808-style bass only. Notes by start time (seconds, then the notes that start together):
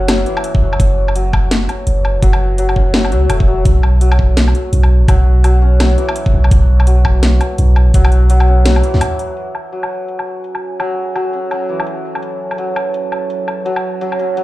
Already playing: F#1
0.62 F#1
0.80 F#1
1.87 F#1
2.15 E1
2.23 F#1
3.12 C#2
3.30 E1
3.65 B1
4.73 B1
5.01 A1
5.08 B1
6.34 B1
6.51 B1
7.59 B1
7.87 A1
7.94 B1
8.94 D2